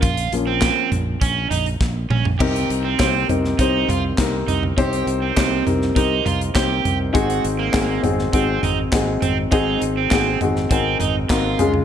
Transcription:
<<
  \new Staff \with { instrumentName = "Overdriven electric guitar" } { \time 4/4 \key c \phrygian \tempo 4 = 101 f'8 r16 c'8. r8 des'8 ees'16 r8. des'16 r16 | g'8 r16 c'8. r8 ees'8 f'16 r8. ees'16 r16 | g'8 r16 c'8. r8 ees'8 f'16 r16 g'8. r16 | ges'8 r16 bes8. r8 c'8 ees'16 r8. c'16 r16 |
ees'8 r16 c'8. r8 c'8 ees'16 r16 f'8. r16 | }
  \new Staff \with { instrumentName = "Upright piano" } { \time 4/4 \key c \phrygian << { r1 | r1 | r1 | r1 |
r4. ges''8 aes''4 bes''4 | } \\ { r1 | <c' ees' g' bes'>8. r16 <c' ees' g' c''>8 <c' ees' g' bes'>8 <c' ees' g' c''>8. r16 <c' ees' g' bes'>8. r16 | <c' ees' g' c''>8. r16 <c' ees' g' c''>8 <c' ees' g' bes'>8 <c' ees' g' bes'>8. r16 <c' ees' g' c''>8. r16 | <c' ees' ges' aes'>8. r16 <c' ees' ges' aes'>8 <c' ees' ges' aes'>8 <c' ees' ges' aes'>8. r16 <c' ees' ges' aes'>8. r16 |
<c' ees' ges' aes'>8. r16 <c' ees' ges' aes'>8 <c' ees' ges' aes'>8 <c' ees' ges' bes'>8. r16 <c' ees' ges' bes'>8 <aes des' f' aes'>8 | } >> }
  \new Staff \with { instrumentName = "Upright piano" } { \clef bass \time 4/4 \key c \phrygian r8 <f bes des'>8 r2. | c4. r2 r8 | c4. r2 r8 | aes,4. r2 r8 |
aes,4. r2 des8 | }
  \new Staff \with { instrumentName = "Fingered electric bass" } { \clef bass \time 4/4 \key c \phrygian bes,,8 bes,,8. r16 bes,,8 bes,,8 bes,,8 bes,,8 bes,,8 | c,8 c,8 c,8 c,8 c,8 c,8 c,8 c,8 | c,8 c,8 c,8 c,8 c,8 c,8 c,8 c,8 | aes,,8 aes,,8 aes,,8 aes,,8 aes,,8 aes,,8 aes,,8 aes,,8 |
aes,,8 aes,,8 aes,,8 aes,,8 aes,,8 aes,,8 aes,,8 des,8 | }
  \new DrumStaff \with { instrumentName = "Drums" } \drummode { \time 4/4 <hh bd>16 hh16 hh8 <hc hh bd sn>8 <hh tomfh>8 <hh bd>8 <hh tomfh>16 hh16 <bd sn>8 toml16 tomfh16 | <cymc bd>16 hh16 hh8 <hc hh bd sn>8 <hh tomfh>16 sn16 <hh bd>8 <hh tomfh>8 <hc hh bd sn>8 <hh tomfh>16 tomfh16 | <hh bd>16 hh16 hh8 <hc hh bd sn>8 <hh tomfh>16 sn16 <hh bd>8 <hh tomfh>16 hh16 <hc hh bd sn>8 <hh tomfh>8 | <hh bd>16 hh16 hh8 <hc hh bd sn>8 <hh tomfh>16 sn16 <hh bd>8 <hh tomfh>8 <hc hh bd sn>8 <hh tomfh>8 |
<hh bd>8 hh8 <hc hh bd sn>8 <hh tomfh>16 sn16 <hh bd>8 <hh tomfh>8 <hc hh bd sn>8 <hh tomfh>16 tomfh16 | }
>>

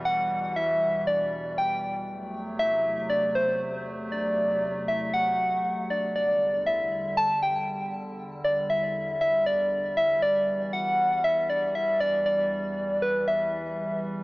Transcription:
<<
  \new Staff \with { instrumentName = "Soft synth lead" } { \time 4/4 \key e \minor \tempo 4 = 118 fis''4 e''4 d''4 g''8. r16 | r4 e''4 d''8 c''4 r8 | d''4. e''8 fis''4. d''8 | d''4 e''4 a''8 g''4 r8 |
r8 d''8 e''4 e''8 d''4 e''8 | d''4 fis''4 e''8 d''8 e''8 d''8 | d''4. b'8 e''4. r8 | }
  \new Staff \with { instrumentName = "Analog synth pad" } { \clef bass \time 4/4 \key e \minor << { <e, b, g>1 | <e, c a>1~ | <e, c a>1 | <e, g>1~ |
<e, g>1~ | <e, g>1~ | <e, g>1 | } \\ { e1 | fis1~ | fis1 | d1~ |
d1 | e1~ | e1 | } >> }
>>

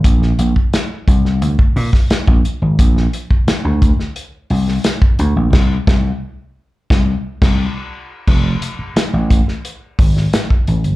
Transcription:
<<
  \new Staff \with { instrumentName = "Slap bass" } { \clef bass \time 4/4 \key bes \major \tempo 4 = 88 bes,,8 bes,,16 r8. c,8 d,16 r16 bes,16 r8 bes,,16 r16 aes,,16 | bes,,8 r8. d,8 r8. c,8 r8 d,16 bes,,16 | c,8 c,8 r4 c,8 r16 c,8 r8. | f,,8 r8. a,,8 r8. aes,,8 r8 a,,16 g,,16 | }
  \new DrumStaff \with { instrumentName = "Drums" } \drummode { \time 4/4 <hh bd>16 sn16 hh16 bd16 <hh sn>8 <hh bd>16 sn16 hh16 bd16 hho16 <bd sn>16 <hh sn>16 bd16 hh8 | <hh bd>16 sn16 hh16 bd16 <hh sn>8 <hh bd>16 sn16 hh8 hho16 sn16 <hh sn>16 bd16 hh8 | <cymc bd sn>8 <bd sn>8 r4 <bd sn>8. <cymc bd sn>16 r4 | <cymc bd>8 hh8 <hh sn>8 <hh bd>16 sn16 hh8 <hho bd>16 sn16 <hh sn>16 bd16 hh16 hh16 | }
>>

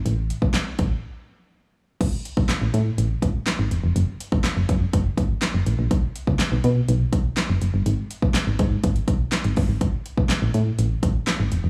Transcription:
<<
  \new Staff \with { instrumentName = "FM bass" } { \clef bass \time 4/4 \key a \lydian \tempo 4 = 123 a,,8. b,,16 r8 a,,8 r2 | a,,16 r8 b,,16 r16 a,,16 a,8 a,,8 a,,8 r16 gis,,16 e,,16 eis,,16 | fis,,16 r8 gis,,16 r16 fis,,16 fis,8 fis,,8 gis,,8 r16 fis,,16 a,,16 ais,,16 | b,,16 r8 cis,16 r16 b,,16 b,8 b,,8 b,,8 r16 fis,,16 fis,,16 g,,16 |
gis,,16 r8 b,,16 r16 gis,,16 gis,8 gis,,8 b,,8 r16 gis,,16 g,,16 gis,,16 | a,,16 r8 b,,16 r16 a,,16 a,8 a,,8 a,,8 r16 gis,,16 e,,16 eis,,16 | }
  \new DrumStaff \with { instrumentName = "Drums" } \drummode { \time 4/4 hh8 hh16 bd16 <hc hh sn>8 <hh bd>8 r4 r4 | <cymc hh bd>8 hh16 bd16 <hc hh sn>8 hh8 hh8 <hh bd>8 <hc hh sn>8 hh8 | hh8 hh16 bd16 <hc hh sn>8 <hh bd>8 <hh bd>8 <hh bd>8 <hc hh sn>8 hh8 | <hh bd>8 hh16 bd16 <hc hh sn>8 hh8 hh8 <hh bd>8 <hc hh sn>8 hh8 |
hh8 hh16 bd16 <hc hh sn>8 <hh bd>8 <hh bd>16 hh16 <hh bd>8 <hc hh sn>16 hh16 <hho bd>8 | <hh bd>8 hh16 bd16 <hc hh sn>8 hh8 hh8 <hh bd>8 <hc hh sn>8 hh8 | }
>>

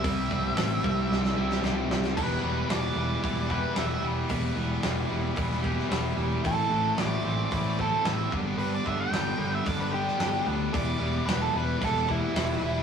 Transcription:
<<
  \new Staff \with { instrumentName = "Lead electric guitar" } { \time 4/4 \key e \minor \tempo 4 = 112 e''2. r4 | b'4 d''4. b'8 e''8 r8 | r1 | a'4 d''4. a'8 e''8 r8 |
b'16 d''16 e''16 g''4 e''16 d''16 b'16 g'4 r8 | d''4 b'16 a'16 b'8 a'8 e'4. | }
  \new Staff \with { instrumentName = "Clean electric guitar" } { \clef bass \time 4/4 \key e \minor r1 | e,8 b,8 e8 g8 e'8 g'8 e'8 g8 | e,8 b,8 e8 g8 e'8 g'8 e'8 g8 | a,8 e8 e8 c'8 e'8 a'8 e'8 g,8 |
g,8 d8 g8 b8 d'8 g'8 d'8 b8 | r1 | }
  \new Staff \with { instrumentName = "Distorted electric guitar" } { \clef bass \time 4/4 \key e \minor <c g c' e'>2~ <c g c' e'>8 <c g c' e'>8 <c g c' e'>4 | <e g b e'>8 <e g b e'>8 <e g b e'>8 <e g b e'>8 <e g b e'>8 <e g b e'>8 <e g b e'>8 <e g b e'>8 | <e g b e'>8 <e g b e'>8 <e g b e'>8 <e g b e'>8 <e g b e'>8 <e g b e'>8 <e g b e'>8 <e g b e'>8 | <a, e a c' e'>8 <a, e a c' e'>8 <a, e a c' e'>8 <a, e a c' e'>8 <a, e a c' e'>8 <a, e a c' e'>8 <a, e a c' e'>8 <g, d g b d'>8 |
<g, d g b d'>8 <g, d g b d'>8 <g, d g b d'>8 <g, d g b d'>8 <g, d g b d'>8 <g, d g b d'>8 <g, d g b d'>8 <g, d g b d'>8 | <e g b e'>8 <e g b e'>8 <e g b e'>8 <e g b e'>8 <e g b e'>8 <e g b e'>8 <e g b e'>8 <e g b e'>8 | }
  \new Staff \with { instrumentName = "Fingered electric bass" } { \clef bass \time 4/4 \key e \minor c,8 c,8 a,,8 c,8 c,8 c,8 c,8 c,8 | e,,8 e,,8 e,,8 e,,8 e,,4 e,,8 e,,8 | e,,8 e,,8 e,,8 e,,8 e,,4 e,,8 e,,8 | a,,8 a,,8 a,,8 a,,8 a,,4 a,,8 g,,8 |
g,,8 g,,8 g,,8 g,,8 g,,4 g,,8 d,8 | e,,8 e,,8 e,,8 e,,8 e,,4 e,,8 e,,8 | }
  \new DrumStaff \with { instrumentName = "Drums" } \drummode { \time 4/4 <hho bd>8 bd8 <hho sn>8 bd8 sn16 sn8 sn16 sn8 sn16 sn16 | <cymc bd>4 <hho sn>4 <hho bd>8 bd8 <hho sn>4 | <hho bd>4 <hho sn>4 <hho bd>16 sn16 bd16 sn16 <hho sn>4 | <hho bd>4 <hho sn>4 <hho bd>8 bd8 <hho sn>8 bd8 |
hho8 bd8 <hho sn>4 <hho bd>8. sn16 <hho sn>4 | <hho bd>4 <hho sn>4 <hho bd>16 sn16 bd8 <hho sn>4 | }
>>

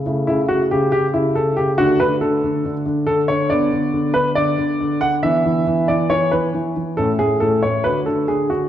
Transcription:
<<
  \new Staff \with { instrumentName = "Grand piano" } { \time 4/4 \key d \major \tempo 4 = 139 << { r8 e'8 fis'8 g'8 g'8 e'8 a'8 g'8 | fis'8 b'8 a'2 a'8 cis''8 | \key e \mixolydian d''4. b'8 d''4. fis''8 | e''4. d''8 cis''8 b'8 r4 |
a'8 gis'8 a'8 cis''8 b'8 a'8 gis'8 fis'8 | } \\ { <a e'>1 | <a d'>1 | <b d'>1 | <b d'>1 |
<cis' e'>2 <d' fis'>2 | } >> }
  \new Staff \with { instrumentName = "Grand piano" } { \clef bass \time 4/4 \key d \major cis8 cis8 cis8 cis8 cis8 cis8 cis8 cis8 | d8 d8 d8 d8 d8 d8 d8 d8 | \key e \mixolydian d8 d8 d8 d8 d8 d8 d8 d8 | e8 e8 e8 e8 e8 e8 e8 e8 |
a,8 a,8 a,8 a,8 d8 d8 d8 d8 | }
>>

